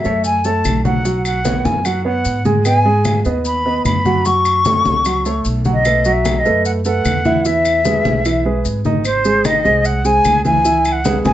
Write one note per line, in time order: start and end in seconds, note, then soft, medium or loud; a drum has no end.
0.00 0.23 E5 medium
0.05 0.61 F#2 medium
0.05 0.38 A3 medium
0.05 0.38 A4 medium
0.05 0.38 C#5 medium
0.05 high conga soft
0.05 maracas soft
0.24 0.46 G#5 loud
0.24 high conga soft
0.24 maracas medium
0.44 0.78 A3 medium
0.44 0.78 A4 medium
0.44 0.78 C#5 medium
0.44 0.85 A5 loud
0.44 high conga soft
0.44 maracas medium
0.65 1.59 B1 medium
0.65 high conga medium
0.65 claves medium
0.65 maracas medium
0.85 1.01 F#3 medium
0.85 1.01 F#4 medium
0.85 1.02 F#5 medium
0.85 1.22 F#5 medium
0.85 high conga medium
0.85 maracas soft
1.05 1.38 F#3 medium
1.05 1.38 F#4 medium
1.05 1.38 F#5 medium
1.05 high conga soft
1.05 maracas medium
1.25 1.67 F#5 medium
1.25 high conga soft
1.25 claves medium
1.25 maracas medium
1.45 1.78 B3 medium
1.45 1.78 B4 medium
1.45 1.78 C#5 medium
1.45 high conga medium
1.45 maracas medium
1.65 2.21 F#2 medium
1.65 1.87 G#5 medium
1.65 high conga medium
1.65 maracas soft
1.85 2.01 F#3 medium
1.85 2.02 F#4 medium
1.85 2.05 F#5 medium
1.85 2.02 F#5 medium
1.85 high conga soft
1.85 claves medium
1.85 maracas medium
2.05 2.38 B3 medium
2.05 2.38 B4 medium
2.05 2.38 C#5 medium
2.05 2.42 F#5 medium
2.05 high conga soft
2.25 3.19 G#2 medium
2.25 high conga soft
2.25 maracas medium
2.45 2.62 G#3 medium
2.45 2.62 G#4 medium
2.45 2.62 G#5 medium
2.45 high conga medium
2.45 maracas soft
2.65 2.82 B3 medium
2.65 2.82 B4 medium
2.65 2.82 D#5 medium
2.65 3.21 G#5 loud
2.65 high conga soft
2.65 claves medium
2.65 maracas medium
2.85 3.18 G#3 medium
2.85 3.18 G#4 medium
2.85 3.18 G#5 medium
2.85 high conga soft
3.05 high conga medium
3.05 claves medium
3.05 maracas medium
3.25 3.81 D#2 medium
3.25 3.58 B3 medium
3.25 3.58 B4 medium
3.25 3.58 D#5 medium
3.25 high conga soft
3.25 maracas soft
3.45 3.83 B5 loud
3.45 high conga soft
3.45 maracas medium
3.65 3.98 B3 medium
3.65 3.98 B4 medium
3.65 3.98 D#5 medium
3.65 high conga soft
3.85 4.79 F#2 medium
3.85 4.27 B5 medium
3.85 high conga medium
3.85 claves medium
3.85 maracas medium
4.05 4.22 F#3 medium
4.05 4.22 F#4 medium
4.05 4.22 F#5 medium
4.05 high conga medium
4.05 maracas soft
4.25 4.58 F#3 medium
4.25 4.58 F#4 medium
4.25 4.58 F#5 medium
4.25 5.45 C#6 loud
4.25 high conga soft
4.25 maracas medium
4.45 high conga soft
4.45 claves medium
4.45 maracas medium
4.65 4.98 A3 medium
4.65 4.98 A4 medium
4.65 4.99 C#5 medium
4.65 high conga medium
4.65 maracas medium
4.85 5.41 C#2 medium
4.85 high conga medium
4.85 maracas soft
5.05 5.22 F#3 medium
5.05 5.22 F#4 medium
5.05 5.22 F#5 medium
5.05 high conga soft
5.05 claves medium
5.05 maracas medium
5.25 5.58 A3 medium
5.25 5.58 A4 medium
5.25 5.59 C#5 medium
5.25 high conga soft
5.25 maracas medium
5.45 6.39 B1 medium
5.45 high conga soft
5.45 maracas medium
5.65 5.82 F#3 medium
5.65 5.82 F#4 medium
5.65 5.82 F#5 medium
5.65 high conga medium
5.65 maracas soft
5.73 6.14 D#5 medium
5.85 6.02 A3 medium
5.85 6.02 A4 medium
5.85 6.02 B4 medium
5.85 high conga soft
5.85 claves medium
5.85 maracas medium
6.05 6.38 F#3 medium
6.05 6.38 F#4 medium
6.05 6.38 F#5 medium
6.05 high conga soft
6.05 maracas medium
6.12 6.40 E5 medium
6.25 high conga medium
6.25 claves medium
6.25 maracas medium
6.39 6.65 D#5 medium
6.45 7.01 F#2 medium
6.45 6.78 A3 medium
6.45 6.78 A4 medium
6.45 6.78 B4 medium
6.45 high conga soft
6.45 maracas soft
6.65 6.71 F#5 medium
6.65 high conga soft
6.65 maracas medium
6.85 7.18 A3 medium
6.85 7.18 A4 medium
6.85 7.18 B4 medium
6.85 7.48 F#5 loud
6.85 high conga soft
6.85 maracas medium
7.05 7.99 E2 medium
7.05 high conga medium
7.05 claves medium
7.05 maracas medium
7.25 7.42 E3 medium
7.25 7.42 E4 medium
7.25 7.42 E5 medium
7.25 high conga medium
7.25 maracas soft
7.45 7.78 E3 medium
7.45 7.78 E4 medium
7.45 7.78 E5 medium
7.45 8.66 E5 medium
7.45 high conga soft
7.45 maracas medium
7.65 high conga soft
7.65 claves medium
7.65 maracas medium
7.85 8.18 G#3 medium
7.85 8.18 G#4 medium
7.85 8.18 B4 medium
7.85 high conga medium
7.85 maracas medium
8.05 8.61 B1 medium
8.05 high conga medium
8.05 maracas soft
8.25 8.42 E3 medium
8.25 8.42 E4 medium
8.25 8.42 E5 medium
8.25 high conga soft
8.25 claves medium
8.25 maracas medium
8.45 8.78 G#3 medium
8.45 8.78 G#4 medium
8.45 8.78 B4 medium
8.45 high conga soft
8.65 9.59 G#1 medium
8.65 high conga soft
8.65 maracas medium
8.85 9.02 D#3 medium
8.85 9.02 D#4 medium
8.85 9.02 D#5 medium
8.85 high conga medium
8.85 maracas soft
9.05 9.47 C5 medium
9.05 high conga soft
9.05 claves medium
9.05 maracas medium
9.25 9.41 G#3 medium
9.25 9.42 G#4 medium
9.25 9.42 C5 medium
9.25 high conga soft
9.25 maracas medium
9.45 9.61 D#3 medium
9.45 9.62 D#4 medium
9.45 9.87 D#5 medium
9.45 9.62 D#5 medium
9.45 high conga medium
9.45 claves medium
9.45 maracas medium
9.65 10.21 C2 medium
9.65 9.98 G#3 medium
9.65 9.98 G#4 medium
9.65 9.98 C5 medium
9.65 high conga soft
9.65 maracas soft
9.85 10.07 F#5 loud
9.85 high conga soft
9.85 maracas medium
10.05 10.38 G#3 medium
10.05 10.38 G#4 medium
10.05 10.38 C5 medium
10.05 10.45 G#5 loud
10.05 high conga soft
10.05 maracas medium
10.25 11.19 C#2 medium
10.25 high conga medium
10.25 claves medium
10.25 maracas medium
10.45 10.61 E3 medium
10.45 10.61 E4 medium
10.45 10.62 E5 medium
10.45 10.94 G#5 loud
10.45 high conga medium
10.45 maracas soft
10.65 10.98 E3 medium
10.65 10.98 E4 medium
10.65 10.98 E5 medium
10.65 high conga soft
10.65 maracas medium
10.85 high conga soft
10.85 claves medium
10.85 maracas medium
10.92 11.19 F#5 medium
11.05 11.21 G#3 medium
11.05 11.21 G#4 medium
11.05 11.22 B4 medium
11.05 high conga loud
11.05 maracas medium
11.25 11.33 G#1 medium
11.25 11.33 G#3 medium
11.25 11.33 G#4 medium
11.25 11.33 B4 medium
11.25 11.33 G#5 loud
11.25 high conga loud
11.25 maracas soft